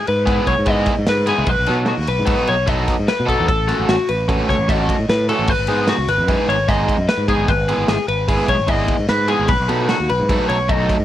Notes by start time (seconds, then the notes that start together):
0.07 G#2 B4, ride
0.26 G#3 B3 E4 G#4, kick, snare, ride
0.47 B1 C#5, kick, ride
0.59 G#2
0.66 G#3 B3 E4 G#4 D#5, kick, ride
0.86 kick, snare, ride
0.99 G#2
1.07 G#2 B4, snare, ride
1.26 G#3 B3 E4 G#4, snare, ride
1.38 C#2
1.46 B1 B4, kick, ride
1.59 B1
1.66 B2 F#3 B3 D#4 A4, ride
1.86 F#4, snare, ride
1.98 D#2
2.07 B1 B4, ride
2.19 G#2
2.26 F#3 B3 D#4 A4, kick, ride
2.47 B1 C#5, ride
2.66 F#3 B3 D#4 A4 D#5, kick, snare, ride
2.88 kick, snare, ride
2.99 G#2
3.08 B4, snare, ride
3.20 B2
3.26 F#3 B3 D#4 A4, kick, ride
3.40 E2
3.48 A1 A4, kick, ride
3.68 A3 C#4 F#4 A4, snare, ride
3.80 A1
3.89 A1 F#4, snare, ride
4.09 A1 B4, ride
4.28 A3 C#4 F#4 A4, kick, snare, ride
4.49 C#2 C#5, kick, snare, ride
4.59 A1
4.68 A3 C#4 F#4 A4 D#5, kick, ride
4.89 kick, ride
4.99 A2
5.09 A2 B4, snare, ride
5.29 A3 C#4 F#4 A4, ride
5.39 A1
5.48 G#1 B4, kick, crash
5.59 G#1
5.67 G#2 G#3 B3 D#4 G#4, ride
5.88 F#4, snare, ride
5.99 C#2
6.07 G#1 B4, snare, ride
6.18 F#2
6.28 G#3 B3 D#4 G#4, kick, ride
6.48 G#1 C#5, ride
6.68 G#3 B3 D#4 G#4 D#5, kick, snare, ride
6.89 kick, ride
6.98 F#2
7.09 B4, snare, ride
7.18 G#2
7.28 G#3 B3 D#4 G#4, kick, ride
7.38 G#1
7.48 G#1 B4, kick, ride
7.69 G#3 B3 E4 G#4, ride
7.78 G#1
7.88 G#1 G#4, snare, ride
8.08 G#1 B4, ride
8.28 G#3 B3 E4 G#4, kick, ride
8.48 B1 C#5, kick, ride
8.59 G#1
8.67 G#3 B3 E4 G#4 D#5, kick, ride
8.88 kick, ride
8.99 G#2
9.09 G#2 B4, snare, ride
9.28 G#3 B3 E4 G#4, ride
9.39 G#1
9.48 B1 B4, kick, ride
9.60 B1
9.68 B2 F#3 A3 D#4 A4, ride
9.89 F#4, snare, ride
10.00 D#2
10.09 B1 B4, ride
10.20 G#2
10.29 F#3 A3 D#4 A4, kick, ride
10.49 B1 C#5, ride
10.68 F#3 A3 D#4 A4 D#5, kick, ride
10.89 kick, snare, ride
11.00 G#2